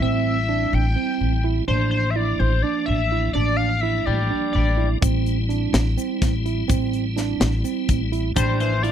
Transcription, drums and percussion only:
5.02 kick loud
5.02 closed hi-hat medium
5.02 shaker soft
5.26 closed hi-hat medium
5.50 closed hi-hat medium
5.74 snare loud
5.74 closed hi-hat medium
5.98 closed hi-hat soft
5.98 shaker soft
6.22 kick loud
6.22 snare soft
6.22 closed hi-hat medium
6.46 closed hi-hat medium
6.69 kick loud
6.69 closed hi-hat medium
6.69 shaker medium
6.93 closed hi-hat medium
7.17 snare soft
7.17 closed hi-hat medium
7.41 snare loud
7.41 closed hi-hat medium
7.65 closed hi-hat medium
7.65 shaker soft
7.88 kick medium
7.88 closed hi-hat medium
8.13 closed hi-hat medium
8.36 kick medium
8.36 closed hi-hat medium
8.36 shaker medium
8.60 closed hi-hat medium
8.84 closed hi-hat medium

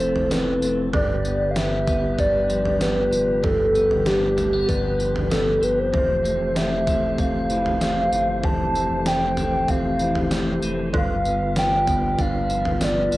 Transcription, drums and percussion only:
0.00 tambourine medium
0.16 floor tom medium
0.31 snare loud
0.31 tambourine loud
0.62 tambourine medium
0.93 kick loud
0.93 floor tom loud
1.25 tambourine medium
1.56 snare loud
1.56 tambourine medium
1.87 kick loud
1.87 floor tom medium
1.87 tambourine medium
2.19 kick medium
2.19 floor tom medium
2.19 tambourine medium
2.50 tambourine medium
2.66 floor tom medium
2.81 snare loud
2.81 tambourine medium
3.13 tambourine medium
3.44 kick loud
3.44 floor tom loud
3.75 tambourine medium
3.91 floor tom medium
4.06 snare loud
4.06 tambourine medium
4.38 floor tom medium
4.38 tambourine medium
4.69 kick medium
4.69 floor tom medium
4.69 tambourine medium
5.00 tambourine medium
5.16 floor tom medium
5.31 snare loud
5.31 tambourine medium
5.63 tambourine medium
5.94 kick loud
5.94 floor tom loud
6.25 tambourine medium
6.56 snare loud
6.56 tambourine medium
6.87 kick loud
6.87 floor tom medium
6.87 tambourine medium
7.18 kick loud
7.18 floor tom medium
7.18 tambourine medium
7.50 tambourine medium
7.66 floor tom medium
7.81 snare loud
7.81 tambourine loud
8.12 tambourine medium
8.43 kick loud
8.43 floor tom loud
8.75 tambourine medium
9.06 snare loud
9.06 tambourine loud
9.37 floor tom medium
9.37 tambourine medium
9.68 kick loud
9.68 floor tom medium
9.68 tambourine medium
9.99 tambourine medium
10.15 floor tom medium
10.31 snare loud
10.31 tambourine loud
10.62 tambourine medium
10.94 kick loud
10.94 floor tom loud
11.25 tambourine medium
11.56 snare loud
11.56 tambourine medium
11.87 kick loud
11.87 floor tom medium
11.87 tambourine medium
12.18 kick medium
12.18 floor tom medium
12.18 tambourine medium
12.50 tambourine medium
12.65 floor tom medium
12.81 snare loud
12.81 tambourine loud
13.12 tambourine medium

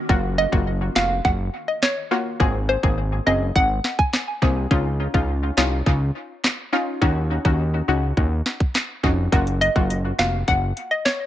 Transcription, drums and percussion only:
0.09 kick loud
0.53 kick medium
0.96 snare loud
0.96 clap loud
1.25 kick loud
1.83 cross-stick medium
1.83 snare loud
1.83 clap medium
2.40 kick loud
2.83 kick loud
3.56 kick loud
3.84 snare medium
3.99 kick medium
4.13 cross-stick medium
4.13 snare loud
4.13 clap medium
4.42 kick medium
4.71 kick loud
5.14 kick loud
5.58 snare loud
5.58 clap loud
5.86 kick medium
6.44 cross-stick medium
6.44 snare loud
6.44 clap medium
7.02 kick loud
7.45 kick loud
8.17 kick loud
8.46 snare medium
8.60 kick medium
8.75 snare loud
8.75 clap medium
9.04 kick medium
9.32 kick loud
9.32 closed hi-hat medium
9.47 closed hi-hat medium
9.62 closed hi-hat medium
9.76 kick medium
9.90 closed hi-hat medium
10.19 snare loud
10.19 clap loud
10.19 closed hi-hat medium
10.48 kick medium
10.48 closed hi-hat medium
10.77 closed hi-hat medium
11.06 cross-stick medium
11.06 snare loud
11.06 clap medium
11.06 closed hi-hat medium

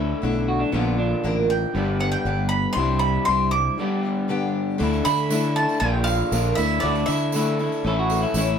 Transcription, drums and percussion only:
4.80 tambourine soft
4.93 tambourine soft
5.05 tambourine medium
5.18 tambourine soft
5.30 tambourine loud
5.44 tambourine soft
5.56 tambourine soft
5.69 tambourine soft
6.07 tambourine medium
6.20 tambourine soft
6.32 tambourine loud
6.45 tambourine soft
6.58 tambourine medium
6.82 tambourine soft
6.95 tambourine soft
7.08 tambourine medium
7.20 tambourine soft
7.32 tambourine medium
7.46 tambourine soft
7.59 tambourine soft
7.72 tambourine soft
8.10 tambourine medium
8.22 tambourine soft
8.34 tambourine medium
8.47 tambourine soft

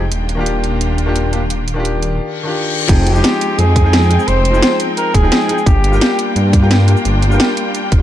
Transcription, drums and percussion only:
0.12 closed hi-hat medium
0.29 closed hi-hat medium
0.46 closed hi-hat medium
0.64 closed hi-hat medium
0.81 closed hi-hat medium
0.98 closed hi-hat medium
1.16 closed hi-hat medium
1.33 closed hi-hat medium
1.50 closed hi-hat medium
1.68 closed hi-hat medium
1.85 closed hi-hat medium
2.03 closed hi-hat medium
2.89 kick loud
2.89 closed hi-hat medium
2.89 crash loud
2.89 shaker medium
3.07 closed hi-hat loud
3.16 shaker medium
3.24 snare loud
3.24 closed hi-hat medium
3.24 shaker medium
3.41 closed hi-hat medium
3.59 closed hi-hat medium
3.59 shaker medium
3.76 kick loud
3.76 closed hi-hat loud
3.76 shaker soft
3.93 snare loud
3.93 closed hi-hat medium
3.93 shaker medium
4.02 shaker soft
4.11 closed hi-hat loud
4.20 shaker medium
4.28 closed hi-hat medium
4.28 shaker soft
4.45 closed hi-hat loud
4.54 shaker medium
4.63 snare loud
4.63 closed hi-hat medium
4.63 shaker medium
4.80 closed hi-hat loud
4.97 closed hi-hat medium
4.97 shaker soft
5.14 kick loud
5.14 closed hi-hat loud
5.14 shaker soft
5.32 snare loud
5.32 closed hi-hat medium
5.32 shaker soft
5.41 shaker soft
5.49 closed hi-hat loud
5.58 shaker medium
5.66 kick loud
5.66 closed hi-hat medium
5.66 shaker soft
5.84 closed hi-hat medium
5.93 shaker medium
6.01 snare loud
6.01 closed hi-hat medium
6.01 shaker soft
6.19 closed hi-hat medium
6.36 closed hi-hat medium
6.36 shaker soft
6.53 kick loud
6.53 closed hi-hat loud
6.53 shaker soft
6.71 snare loud
6.71 closed hi-hat medium
6.71 shaker soft
6.80 shaker soft
6.88 closed hi-hat loud
6.97 shaker medium
7.05 closed hi-hat medium
7.05 shaker soft
7.22 closed hi-hat medium
7.32 shaker medium
7.40 snare loud
7.40 closed hi-hat medium
7.40 shaker soft
7.57 closed hi-hat medium
7.75 closed hi-hat medium
7.75 shaker soft
7.92 kick loud
7.92 closed hi-hat medium
7.92 shaker soft

